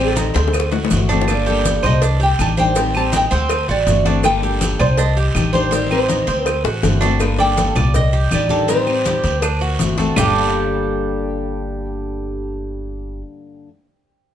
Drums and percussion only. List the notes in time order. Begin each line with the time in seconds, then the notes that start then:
0.16 cowbell, high conga, short guiro, maracas
0.34 cowbell, high bongo, short guiro, maracas
0.48 high bongo
0.52 cowbell, high conga, long guiro, claves, maracas
0.60 high bongo
0.72 low bongo, high conga, maracas
0.85 low bongo
0.90 cowbell, high conga, short guiro, maracas
0.97 low bongo
1.09 cowbell, high conga, short guiro, maracas
1.22 low bongo
1.28 cowbell, long guiro, claves, maracas
1.47 high conga, maracas
1.65 cowbell, high conga, short guiro, maracas
1.83 cowbell, high conga, low conga, short guiro, claves, maracas
2.02 cowbell, high conga, long guiro, maracas
2.21 high conga, maracas
2.39 cowbell, high conga, short guiro, claves, maracas
2.57 high conga, short guiro, maracas
2.76 cowbell, high conga, long guiro, maracas
2.94 high conga, claves, maracas
3.13 cowbell, high conga, short guiro, maracas
3.32 cowbell, high conga, short guiro, maracas
3.49 cowbell, high conga, long guiro, claves, maracas
3.69 high conga, maracas
3.87 cowbell, high conga, short guiro, maracas
4.05 cowbell, high conga, short guiro, maracas
4.23 cowbell, high conga, long guiro, claves, maracas
4.43 high conga, maracas
4.61 cowbell, high conga, short guiro, maracas
4.79 cowbell, high conga, low conga, short guiro, claves, maracas
4.97 cowbell, high conga, long guiro, maracas
5.17 high conga, maracas
5.35 cowbell, high conga, short guiro, claves, maracas
5.54 high conga, short guiro, maracas
5.72 cowbell, high conga, long guiro, maracas
5.91 high conga, claves, maracas
6.09 cowbell, high conga, short guiro, maracas
6.28 cowbell, high conga, short guiro, maracas
6.46 cowbell, high conga, long guiro, claves, maracas
6.65 high bongo, high conga, maracas
6.83 cowbell, high bongo, high conga, short guiro, maracas
7.02 cowbell, low bongo, short guiro, maracas
7.20 cowbell, long guiro, claves, maracas
7.39 high conga, maracas
7.57 cowbell, high conga, short guiro, maracas
7.76 cowbell, high conga, low conga, short guiro, claves, maracas
7.94 cowbell, high conga, low conga, long guiro, maracas
8.12 high conga, maracas
8.31 cowbell, high conga, short guiro, claves, maracas
8.49 high conga, short guiro, maracas
8.68 cowbell, high conga, long guiro, maracas
8.87 high conga, claves, maracas
9.04 cowbell, high conga, short guiro, maracas
9.24 cowbell, high conga, short guiro, maracas
9.42 cowbell, high conga, long guiro, claves, maracas
9.62 high conga, maracas
9.79 cowbell, high conga, short guiro, maracas
9.98 cowbell, high conga, short guiro, maracas
10.16 low bongo, low conga, long guiro, claves, maracas